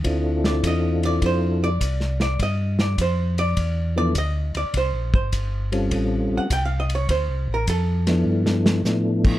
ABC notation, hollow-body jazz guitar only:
X:1
M:4/4
L:1/16
Q:"Swing" 1/4=102
K:Ddor
V:1 name="Hollow-body jazz guitar"
z2 d2 _e2 d2 c2 d4 d2 | _e2 d2 c2 d4 d2 e2 d2 | c2 c4 z4 z ^f g ^e _e ^c | c3 _B A8- A3 z |]